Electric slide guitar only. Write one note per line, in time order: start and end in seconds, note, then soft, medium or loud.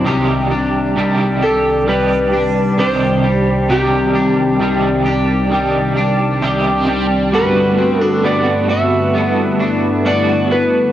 1.44 1.88 A4 medium
1.89 2.79 B4 loud
2.79 3.73 C5 loud
3.71 4.57 G4 medium
7.35 8.01 B4 medium
8.01 8.28 A4 medium
8.25 8.70 D5 loud
8.71 10.06 E5 loud
10.06 10.48 D5 loud
10.52 10.92 B4 medium